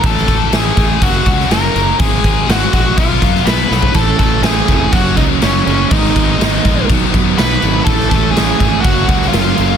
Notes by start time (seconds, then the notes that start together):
0.03 A1 A2 E3 A3 A4, kick, crash
0.18 snare
0.27 A1 A2 E3 A3, kick, crash
0.52 A1 A2 E3 A3 G#4, snare, crash
0.77 A1 A2 E3 A3, kick, crash
1.01 F#1 F#2 C#3 F#3 F#4, kick, crash
1.25 C#2 F#2 C#3 F#3, kick, crash
1.40 snare
1.49 F#1 F#2 C#3 F#3 A#4, snare, crash
1.75 F#1 F#2 C#3 F#3, crash
1.99 G#1 G#2 D#3 G#3 G#4, kick, crash
2.24 G#1 G#2 D#3 G#3, kick, crash
2.49 G#1 G#2 D#3 G#3 F#4, snare, crash
2.73 A#1 G#2 D#3 G#3 F#4, kick, crash
2.98 B1 B2 F#3 B3 F4, kick, crash
3.22 F#2 B2 F#3 B3, kick, crash
3.35 snare
3.45 B1 B2 F#3 B3 B4, snare, crash
3.69 B1 B2 F#3 B3, snare
3.82 floor tom
3.94 A1 A2 E3 A3 C#4 E4 A4, kick, crash
4.19 A1 A2 E3 A3 C#4 E4 A4, kick, crash
4.42 A1 A2 E3 A3 C#4 E4 G#4, snare, crash
4.68 F1 A2 E3 A3 C#4 E4, kick, crash
4.92 F#1 F#2 C#3 F#3 A#3 C#4 F#4, kick, crash
5.17 C#2 F#2 C#3 F#3 A#3 C#4 D#4, kick, crash
5.42 F#1 F#2 C#3 F#3 A#3 C#4, snare, crash
5.66 F#1 F#2 C#3 F#3 A#3 C#4, crash
5.90 G#1 G#2 D#3 G#3 B3 D#4, kick, crash
6.05 snare
6.15 G#1 G#2 D#3 G#3 B3 D#4, kick, crash
6.38 G#1 G#2 D#3 G#3 B3, snare, crash
6.42 D#4
6.63 A#1 G#2 D#3 G#3 B3 D#4, kick, crash
6.89 B1 B2 D#3 F#3 B3 D#4, kick, crash
7.12 F#2 B2 D#3 F#3 B3 D#4, kick, crash
7.37 B1 B2 D#3 F#3 B3 D#4 B4, snare, crash
7.60 G#1 B2 D#3 F#3 B3 D#4, crash
7.85 A1 A2 E3 A3 C#4 E4 A4, kick, crash
8.00 snare
8.10 A1 A2 E3 A3 C#4 E4 A4, kick, crash
8.31 G#4
8.35 A1 A2 E3 A3 C#4 E4, snare, crash
8.60 G#1 A2 E3 A3 C#4 E4, kick, crash
8.80 F#2 F#4, crash
8.84 F#1 C#3 F#3 A#3 C#4, kick
9.08 C#2 F#2 C#3 F#3 A#3 C#4, kick, crash
9.22 snare
9.28 F4
9.33 F#1 F#2 C#3 F#3 A#3 C#4, snare, crash
9.58 F#1 F#2 C#3 F#3 A#3 C#4, crash